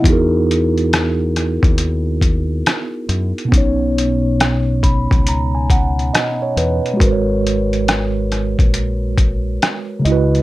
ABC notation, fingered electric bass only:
X:1
M:4/4
L:1/16
Q:"Swing 16ths" 1/4=69
K:G#m
V:1 name="Fingered electric bass" clef=bass
E,,6- E,, D,,4- D,, z2 F,, z | B,,,6- B,,, C,,4- C,, z2 E,, z | G,,,6- G,,, A,,,4- A,,, z2 C,,2 |]